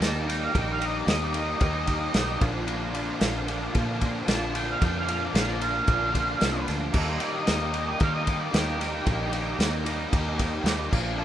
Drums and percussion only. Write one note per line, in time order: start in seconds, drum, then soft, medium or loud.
0.02 snare loud
0.02 ride loud
0.30 snare soft
0.30 ride medium
0.55 kick loud
0.55 ride medium
0.82 ride medium
1.08 snare loud
1.08 ride loud
1.34 ride medium
1.61 kick loud
1.61 ride loud
1.87 kick medium
1.87 ride medium
2.14 snare loud
2.14 ride loud
2.41 kick loud
2.41 ride medium
2.68 ride loud
2.95 ride medium
3.21 snare loud
3.21 ride loud
3.48 ride medium
3.75 kick loud
3.75 ride loud
4.01 kick medium
4.01 ride medium
4.28 snare loud
4.28 ride loud
4.55 ride medium
4.82 kick loud
4.82 ride loud
5.08 ride medium
5.35 snare loud
5.35 ride loud
5.61 ride medium
5.88 kick loud
5.88 ride loud
6.15 kick medium
6.15 ride medium
6.41 snare loud
6.41 ride loud
6.68 snare soft
6.68 ride medium
6.94 kick loud
6.94 crash loud
7.20 ride medium
7.47 snare loud
7.47 ride loud
7.74 ride medium
8.00 kick loud
8.00 ride loud
8.27 kick medium
8.27 ride medium
8.54 snare loud
8.54 ride loud
8.81 snare soft
8.81 ride medium
9.06 kick loud
9.06 ride loud
9.33 ride medium
9.60 snare loud
9.60 ride loud
9.86 ride medium
10.13 kick loud
10.13 ride loud
10.39 kick medium
10.39 ride medium
10.66 snare loud
10.66 ride loud
10.93 kick loud
10.93 crash medium